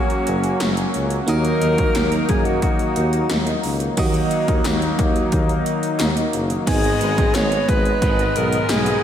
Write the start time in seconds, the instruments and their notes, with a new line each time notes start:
Already playing: analog synth pad F#3 A#3 C#4, fm electric piano A#3 C#4 F#4 C#5, alto saxophone F#4
0.10 closed hi-hat
0.27 tuba F#1, closed hi-hat
0.44 closed hi-hat
0.60 tuba F#1, snare, clap, closed hi-hat
0.77 closed hi-hat
0.94 tuba C#2, closed hi-hat
1.10 closed hi-hat
1.27 tuba D#2, fm electric piano D#3 A#3 D#4 F#4 D#5, analog synth pad A#3 D#4, alto saxophone A#4, closed hi-hat
1.45 closed hi-hat
1.61 tuba D#2, closed hi-hat
1.78 kick, closed hi-hat
1.95 tuba D#2, snare, clap, closed hi-hat
2.12 closed hi-hat
2.28 tuba F#2, alto saxophone G#4, kick, closed hi-hat
2.45 alto saxophone F#4, closed hi-hat
2.62 alto saxophone F#4, kick, closed hi-hat
2.79 closed hi-hat
2.96 tuba D#2, closed hi-hat
3.13 closed hi-hat
3.30 tuba D#2, snare, clap, closed hi-hat
3.47 closed hi-hat
3.63 tuba C#2, open hi-hat
3.80 closed hi-hat
3.97 tuba D#2, fm electric piano D#3 A#3 D#4 F#4 D#5, analog synth pad F#3 A#3 D#4, kick, closed hi-hat, crash
4.14 closed hi-hat
4.31 closed hi-hat
4.48 tuba D#2, kick, closed hi-hat
4.65 tuba D#2, snare, clap, closed hi-hat, tambourine
4.82 closed hi-hat
4.99 tuba D#2, kick, closed hi-hat
5.16 closed hi-hat
5.32 tuba D#2, kick, closed hi-hat
5.49 closed hi-hat
5.66 closed hi-hat
5.83 closed hi-hat
5.99 tuba D#2, snare, clap, closed hi-hat, tambourine
6.17 closed hi-hat
6.33 tuba F#1, closed hi-hat
6.50 closed hi-hat
6.67 tuba G#1, overdriven electric guitar G#2 D#3 G#3, fm electric piano G#2 B3 D#4 G#4, analog synth pad G#3 B3 D#5, alto saxophone G#4, kick, closed hi-hat, crash
6.84 closed hi-hat
7.01 tuba G#1, overdriven electric guitar D#3 G#3, closed hi-hat
7.18 kick, closed hi-hat
7.34 tuba G#1, alto saxophone C#5, snare, clap, closed hi-hat, tambourine
7.52 closed hi-hat
7.68 tuba G#1, alto saxophone B4, kick, closed hi-hat
7.85 closed hi-hat
8.02 tuba G#1, overdriven electric guitar G#2 D#3 G#3, kick, closed hi-hat
8.19 closed hi-hat
8.36 tuba B1, alto saxophone A#4, closed hi-hat
8.53 closed hi-hat
8.69 tuba B1, overdriven electric guitar G#2 D#3 G#3, alto saxophone G#4, snare, clap, closed hi-hat, tambourine
8.86 closed hi-hat